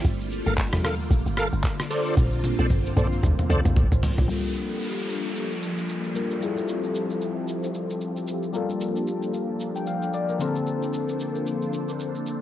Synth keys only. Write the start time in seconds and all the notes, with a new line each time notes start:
4.28 G3 A#3 F4 A4
6.14 G3 A#3 F4 A#4
6.40 G3 E4 F4 G#4
6.50 A4
8.53 G3 A#3 F4 A4
9.76 G5
9.87 F5
10.14 D5
10.30 A#4
10.39 D3 A#3 C4 A4